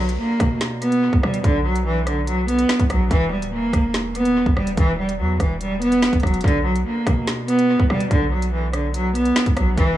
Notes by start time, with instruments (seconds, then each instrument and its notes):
Already playing: 808-style bass B1
0.00 cello F#3
0.09 closed hi-hat
0.19 cello A#3
0.40 808-style bass B2, kick, cross-stick, closed hi-hat
0.61 snare, closed hi-hat
0.82 cello B3, closed hi-hat
0.92 closed hi-hat
1.13 808-style bass B1, kick
1.23 808-style bass B2, cello G3, cross-stick
1.34 closed hi-hat
1.44 808-style bass B1, cello D3, kick, closed hi-hat
1.65 cello F#3
1.76 closed hi-hat
1.86 cello E3
2.07 cello D3, cross-stick, closed hi-hat
2.27 cello F#3, closed hi-hat
2.48 cello B3, closed hi-hat
2.59 closed hi-hat
2.69 snare
2.80 808-style bass B1, kick, closed hi-hat
2.90 808-style bass A#1, cello F#3, kick, cross-stick, closed hi-hat
3.11 808-style bass E1, cello E3, kick, closed hi-hat
3.32 cello G3
3.42 808-style bass D1, closed hi-hat
3.53 cello A#3
3.58 808-style bass E1
3.73 808-style bass E1, kick, cross-stick, closed hi-hat
3.94 snare, closed hi-hat
4.15 cello B3, closed hi-hat
4.25 808-style bass D1, closed hi-hat
4.36 808-style bass E1
4.46 808-style bass E1, kick
4.57 808-style bass E1, cello G3, cross-stick
4.67 closed hi-hat
4.77 808-style bass E1, cello E3, kick, closed hi-hat
4.98 cello G3
5.09 closed hi-hat
5.19 808-style bass E2, cello F#3
5.40 808-style bass E1, cello E3, kick, cross-stick, closed hi-hat
5.61 cello G3, closed hi-hat
5.82 cello B3, closed hi-hat
5.92 closed hi-hat
6.02 snare
6.13 808-style bass E1, kick, closed hi-hat
6.20 808-style bass E1, cello F#3, kick, cross-stick, closed hi-hat
6.27 closed hi-hat
6.34 closed hi-hat
6.41 808-style bass B1, cello D3, kick, closed hi-hat
6.48 closed hi-hat
6.65 cello F#3
6.76 closed hi-hat
6.86 cello A#3
7.07 808-style bass B2, kick, cross-stick, closed hi-hat
7.27 snare, closed hi-hat
7.48 cello B3, closed hi-hat
7.59 closed hi-hat
7.80 808-style bass B1, kick
7.90 808-style bass B2, cello G3, cross-stick
8.00 closed hi-hat
8.11 808-style bass B1, cello D3, kick, closed hi-hat
8.32 cello F#3
8.42 closed hi-hat
8.53 cello E3
8.73 cello D3, cross-stick, closed hi-hat
8.94 cello F#3, closed hi-hat
9.15 cello B3, closed hi-hat
9.25 closed hi-hat
9.36 snare
9.46 808-style bass B1, kick, closed hi-hat
9.57 808-style bass A#1, cello F#3, kick, cross-stick, closed hi-hat
9.78 808-style bass E1, cello E3, kick, closed hi-hat